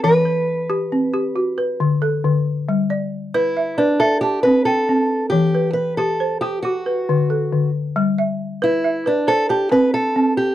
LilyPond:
<<
  \new Staff \with { instrumentName = "Balafon" } { \time 12/8 \key g \major \tempo 4. = 91 << { r8 b'4. c'4 fis'8 b'4 a'4. | r8 d''4. e''4 e''8 a''4 g''4. | r8 b'4. c''4 fis'8 b'4 a'4. | r8 e''4. e''4 c''8 a''4. r4 | } \\ { e4 r8 g'4 g'8 r4 d4 d4 | g4 r8 b'4 b'8 r4 c'4 c'4 | e4 r8 g'4 g'8 r4 d4 d4 | g4 r8 b'4 b'8 r4 c'4 c'4 | } >> }
  \new Staff \with { instrumentName = "Steel-string acoustic guitar" } { \time 12/8 \key g \major b'1 r2 | r4. e'4 d'8 a'8 g'8 b'8 a'4. | g'4 b'8 a'4 g'8 fis'2~ fis'8 r8 | r4. e'4 d'8 a'8 g'8 b'8 a'4 g'8 | }
>>